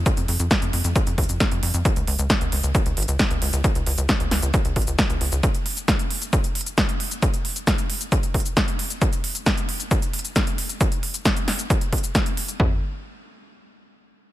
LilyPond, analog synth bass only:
\new Staff \with { instrumentName = "Analog synth bass" } { \clef bass \time 4/4 \key des \lydian \tempo 4 = 134 r16 f,16 f,16 f,16 r16 f,16 f,16 f,16 r16 f,16 ees,16 f,16 r16 f,16 f,16 f,16 | r16 des,16 des,16 des,16 r16 des,16 des,16 des,16 r16 des,16 aes,,16 des,16 r16 des,16 des,16 des,16 | r16 des,16 des,16 des,16 r16 des,16 des,16 des,16 r16 des,16 aes,,16 des,16 r16 des,16 des,16 des,16 | r1 |
r1 | r1 | r1 | f,8 r2. r8 | }